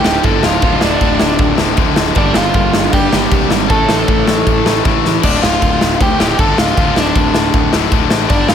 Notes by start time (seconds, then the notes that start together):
Already playing: D2 A2 D3 A3 D4 F4
0.04 D1 D2 A2 D3 G4 G5, snare
0.23 G1 D2 A2 D3 A4 A5, kick, crash
0.43 D1 F4 F5, snare
0.61 D1 D2 A2 D3 A3 F4, kick, crash
0.81 D1 D4 D5, snare
1.01 D1, kick, crash
1.20 D1, snare
1.39 D1, kick, crash
1.57 D1 D2 A2 D3, snare
1.76 D1 D2 A2 D3, kick, crash
1.96 D1, snare
2.14 G1 G2 D3 G3 A#3 D4 G4 D5, kick, crash
2.34 G1 F4 F5, snare
2.54 G1, kick, crash
2.73 G1, snare
2.93 G2 G4 G5, kick, crash
3.12 G1 G2 D3 G3, snare
3.30 C2 G2 D3 G3, kick, crash
3.50 G#1, snare
3.69 A1 A2 E3 A3 C#4 E4 A4 A5, kick, crash
3.89 A1, snare
4.08 A1, kick, crash
4.28 A1, snare
4.47 A1, kick, crash
4.65 A1 A2 E3 A3, snare
4.84 A1 A2 E3 A3, kick, crash
5.04 A1, snare
5.23 D1 D2 A2 D3 D4 D5, kick, crash
5.42 D1 F4 F5, snare
5.62 D1, kick, crash
5.81 D1, snare
6.01 D2 G4 G5, kick, crash
6.19 D1 D2 A2 D3 G4 G5, snare
6.38 G1 D2 A2 D3 A4 A5, kick, crash
6.57 D1 F4 F5, snare
6.76 D1 D2 A2 D3, kick, crash
6.96 D1 D4 D5, snare
7.15 D1, kick, crash
7.34 D1, snare
7.54 D1, kick, crash
7.72 D1 D2 A2 D3, snare
7.90 D1 D2 A2 D3, kick, crash
8.10 A1, snare
8.29 G1 G2 D3 G3 D4 D5, kick, crash
8.49 G1 F4 F5, snare